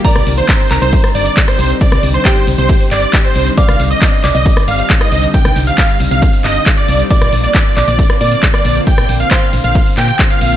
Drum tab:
RD |x---x---x---x---|x---x---x---x---|x---x---x---x---|x---x---x---x---|
HH |xxoxxxoxxxoxxxox|xxoxxxoxxooxxxox|xxoxxxoxxxoxxxox|xxoxxxoxxooxxxox|
SH |xx-xxx-xxx-xxx-x|xx-xxx-xxx-xxx-x|xx-xxx-xxx-xxx-x|xx-xxx-xxx-xxx-x|
CP |----x-x-----x---|----x-----x-x---|----x-x-----x---|----x-----x-x---|
SD |-r-------r---r--|-r--------------|-r-------r---r--|-r--------------|
BD |o---o---o---o---|o---o---o---o---|o---o---o---o---|o---o---o---o---|

RD |x---x---x---x---|x---x---x---x---|
HH |xxoxxxoxxxoxxxox|xxoxxxoxxooxxxox|
SH |xx-xxx-xxx-xxx-x|xx-xxx-xxx-xxx-x|
CP |----x-x-----x---|----x-----x-x---|
SD |-r-------r---r--|-r--------------|
BD |o---o---o---o---|o---o---o---o---|